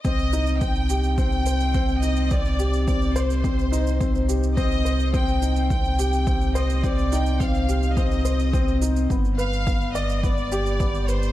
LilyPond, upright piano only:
\new Staff \with { instrumentName = "Upright piano" } { \time 4/4 \key c \minor \tempo 4 = 106 c'8 ees'8 c'8 g'8 c'8 c''8 c'8 ees'8 | c'8 g'8 c'8 c''8 c'8 ees'8 c'8 g'8 | c'8 c''8 c'8 ees'8 c'8 g'8 c'8 c''8 | c'8 ees'8 c'8 g'8 c'8 c''8 c'8 ees'8 |
b8 b'8 b8 d''8 b8 g'8 b8 b'8 | }